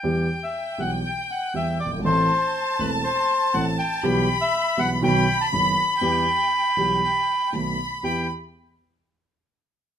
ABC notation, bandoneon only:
X:1
M:4/4
L:1/16
Q:1/4=120
K:Em
V:1 name="Bandoneon"
g3 e3 f2 g2 f2 e2 d2 | c6 B2 c4 f2 g2- | g3 e3 f2 g3 a b4- | b12 z4 |
g2 z12 z2 |]